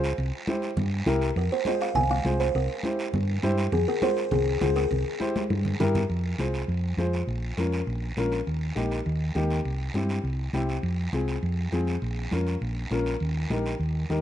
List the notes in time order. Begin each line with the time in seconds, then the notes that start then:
Already playing: C#2
0.04 short guiro
0.18 C2, long guiro
0.47 E4 G4 C5, high conga, short guiro
0.62 short guiro
0.77 G2, low conga, long guiro
1.06 C2 E4 G4 A#4, high conga, short guiro
1.21 short guiro
1.36 F2 A#4, long guiro
1.52 C5
1.65 F4 G#4 C5 D#5, high conga, short guiro
1.81 F5, short guiro
1.95 C2 G#5, low conga, long guiro
2.10 F5, high conga
2.24 C2 F4 G#4 C5, high conga, short guiro
2.40 C5, short guiro
2.55 C2 A#4, long guiro
2.83 E4 G4 C5, high conga, short guiro
2.99 short guiro
3.14 G2, low conga, long guiro
3.43 G2 E4 G4 C5, high conga, short guiro
3.58 short guiro
3.72 F2 G#4, low conga, long guiro
3.88 A#4
4.01 F4 G#4 C5, high conga, short guiro
4.17 short guiro
4.31 C2 G#4, low conga, long guiro
4.61 C#2 F4 G#4 C5, high conga, low conga, short guiro
4.76 A#4, short guiro
4.91 C2, low conga, long guiro
5.20 E4 G4 C5, high conga, short guiro
5.36 high conga, short guiro
5.50 G2, high conga, long guiro
5.65 low conga
5.80 G2 E4 G4 A#4, low conga, short guiro
5.95 low conga, short guiro
6.09 F2, long guiro
6.38 C2 F4 G#4 C5, high conga, short guiro
6.54 short guiro
6.68 F2, long guiro
6.97 F2 F4 G#4 C5, high conga, short guiro
7.13 short guiro
7.27 A#1, long guiro
7.57 F2 C#4 F4 A#4, high conga, short guiro
7.72 short guiro
7.87 A#1, long guiro
8.17 A#1 C#4 F4 A#4, high conga, short guiro
8.32 short guiro
8.47 D#2, long guiro
8.75 A#1 A#3 D#4 G4, high conga, short guiro
8.91 short guiro
9.06 D#2, long guiro
9.35 D#2 A#3 D#4 G4, high conga, short guiro
9.51 short guiro
9.65 C2, long guiro
9.94 G2 C4 E4 G4, high conga, short guiro
10.09 short guiro
10.23 C2, long guiro
10.53 C2 C4 E4 G4, high conga, short guiro
10.69 short guiro
10.83 F2, long guiro
11.13 C2 C4 F4 G#4, high conga, short guiro
11.28 short guiro
11.43 F2, long guiro
11.72 F2 C4 F4 G#4, high conga, short guiro
11.87 short guiro
12.02 A#1, long guiro
12.31 F2 C#4 F4 A#4, high conga, short guiro
12.47 short guiro
12.61 A#1, long guiro
12.91 A#1 C#4 F4 A#4, high conga, short guiro
13.06 short guiro
13.20 D#2, long guiro
13.50 A#1 D#4 G4 A#4, high conga, short guiro
13.66 short guiro
13.80 D#2, long guiro
14.10 D#2 D#4 G4 A#4, high conga, short guiro